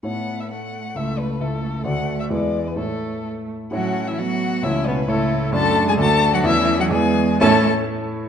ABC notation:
X:1
M:2/4
L:1/16
Q:1/4=130
K:A
V:1 name="Violin"
f3 e f4 | e2 B2 A4 | f3 e d3 B | A4 z4 |
f3 e f4 | e2 B2 A4 | a3 g a3 f | e3 f g4 |
a2 z6 |]
V:2 name="Violin"
z8 | z8 | z8 | z8 |
F3 E F4 | E2 B,2 A,4 | A3 G A3 F | E3 F G4 |
A2 z6 |]
V:3 name="Grand piano"
[A,,A,Ec]8 | [C,,A,Ee]4 [C,,A,Ee]4 | [D,,A,Fd]4 [E,,G,EB]4 | [A,,A,Ec]8 |
[A,,A,Ec]8 | [C,,A,Ec]4 [C,,A,Ec]4 | [F,,A,Fd]4 [D,,A,Fd]4 | [E,,A,Ed]4 [E,,B,Ed]4 |
[A,,A,Ece]2 z6 |]
V:4 name="Viola"
z8 | z8 | z8 | z8 |
C4 B,4 | C4 E4 | D4 D4 | C4 B,2 z2 |
C2 z6 |]
V:5 name="Cello" clef=bass
B,4 A,4 | A,4 A,4 | A,4 G,4 | A,6 z2 |
F,3 E, F,4 | E,2 B,,2 A,,4 | A,3 G, A,3 F, | E,3 F, G,4 |
A,2 z6 |]